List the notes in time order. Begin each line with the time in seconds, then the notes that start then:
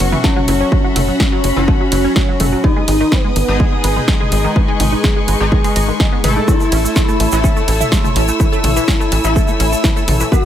Already playing: F#3 B3 C#4 F#4 A4 E5 F#5 C#6
0.00 F#1 F#3 F#4
0.12 E3 E4, mid tom
0.24 A3 C#4 A4, kick, snare
0.36 F#3 F#4, mid tom
0.48 F#1 E3 E4, open hi-hat, ride
0.60 C#4 C#5
0.72 F#3 F#4 B5, kick
0.84 F#3 F#4
0.96 F#1 A3 A4, open hi-hat, mid tom, ride
1.08 F#3 F#4
1.20 E3 E4, kick, snare
1.32 F#3 F#4
1.44 F#1 F#3 F#4, open hi-hat, ride
1.56 F#1 E3 F#3 C#4 E4 F#4
1.68 A3 A4, kick
1.81 F#3 F#4
1.92 F#1 E3 E4, open hi-hat, ride
2.04 C#4 C#5
2.16 F#3 F#4, kick, snare
2.28 F#3 F#4
2.40 F#1 A3 A4, open hi-hat, mid tom, ride
2.52 F#3 F#4
2.64 D#3 D#4 B4 D#5 G#5 D#6, kick
2.76 G#3 G#4
2.88 G#1 G#3 G#4, open hi-hat, ride
3.00 D#3 D#4
3.12 B3 B4, kick, snare
3.24 G#3 G#4
3.36 G#1 D#3 D#4, open hi-hat, ride
3.48 G#1 G#3 D#4 G#4 D#5
3.60 G#3 G#4, kick
3.72 G#3 G#4
3.84 G#1 B3 B4, open hi-hat, ride
3.96 G#3 G#4, mid tom
4.08 D#3 G#3 D#4, kick, snare
4.20 G#3 G#4, mid tom
4.32 G#1 G#3 G#4, open hi-hat, ride
4.44 D#3 D#4
4.56 B3 B4 C#6, kick
4.68 G#3 G#4
4.80 G#1 D#3 D#4, open hi-hat, mid tom, ride
4.92 D#4 D#5
5.04 G#3 G#4, kick, snare
5.16 G#3 G#4
5.28 G#1 B3 B4, open hi-hat, ride
5.40 G#1 G#3 D#4 G#4
5.52 D#3 D#4, kick
5.64 G#3 G#4, open hi-hat
5.76 G#1 D#5 D#6, open hi-hat, ride
5.88 D#3 D#4
6.00 D#3 D#4, kick, snare
6.12 B3 B4
6.24 G#1 A3 E4 A4 B4 B5, open hi-hat, mid tom, ride
6.36 D#4 D#5
6.48 A3 E4 A4 C#5 A5 E6, kick, shaker
6.60 A3 A4, shaker
6.72 A1 C#4 C#5, open hi-hat, ride
6.84 A3 A4, shaker
6.96 E3 E4, kick, snare, shaker
7.08 A3 A4, shaker
7.20 A1 A3 A4, open hi-hat, ride
7.32 A1 E3 A3 E4 A4, shaker
7.44 C#4 C#5, kick, shaker
7.56 A3 A4, shaker
7.68 A1 E3 E4, open hi-hat, ride
7.80 E4 E5, mid tom, shaker
7.92 A3 E4 A4, kick, snare, shaker
8.04 A3 A4, mid tom, shaker
8.16 A1 C#4 C#5, open hi-hat, ride
8.28 A3 A4, shaker
8.40 E3 E4 G#5, kick, shaker
8.52 A3 A4, shaker
8.64 A1 A3 A4, open hi-hat, mid tom, ride
8.76 E3 E4, shaker
8.88 C#4 C#5, kick, snare, shaker
9.00 A3 A4, shaker
9.12 A1 E3 E4, open hi-hat, ride
9.24 A1 A3 E4 A4 E5, shaker
9.36 A3 A4, kick, shaker
9.48 A3 A4, shaker
9.60 A1 C#4 C#5, open hi-hat, ride
9.72 A3 A4, shaker
9.84 E3 E4, kick, snare, shaker
9.96 A3 A4, shaker
10.08 A1 A3 A4, open hi-hat, mid tom, ride
10.20 E3 E4, shaker
10.32 B3 F#4 B4 F#5, kick, shaker